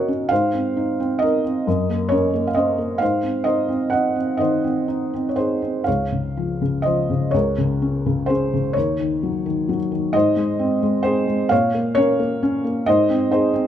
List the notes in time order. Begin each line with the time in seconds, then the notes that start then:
Already playing: D#3 C#4 F#4 A#4 C#5 D#5 F#5
0.08 C#4
0.29 G#2 C5 F5
0.54 C4
0.77 D#4
1.00 C4
1.19 D#4 A#4 D#5
1.44 C4
1.67 F#2
1.90 A#3
2.09 C#4 A#4 C#5
2.33 A#3
2.47 F5
2.55 C#4 C5 D#5
2.78 A#3
2.98 G#2 C5 F5
3.23 C4
3.44 D#4 C5 D#5
3.68 C4
3.90 D#4 D#5 F#5
4.16 C4
4.37 D#3 C5 D#5
4.64 C4
4.88 D#4
5.14 C4
5.29 C#5
5.36 D#4 G#4 C5
5.62 C4
5.84 C#2 C#5 F5
6.12 C#3
6.37 F3
6.62 C#3
6.82 F3 C5 D#5
7.10 C#3
7.31 C#2 A#4 C#5
7.58 C#3
7.82 C#4
8.06 C#3
8.26 C#4 G#4 C5
8.54 C#3
8.73 D#2 A#4 C#5
9.00 D#3
9.23 F#3
9.46 D#3
9.69 F#3
9.92 D#3
10.13 G#2 C5 D#5
10.36 G#3
10.59 C4
10.83 G#3
11.03 C4 G#4 C5
11.28 G#3
11.49 A#2 C#5 F5
11.74 A#3
11.95 C#4 A#4 C#5
12.19 A#3
12.43 C#4
12.64 A#3
12.86 G#2 C5 D#5
13.09 C4
13.31 D#4 G#4 C5
13.54 C4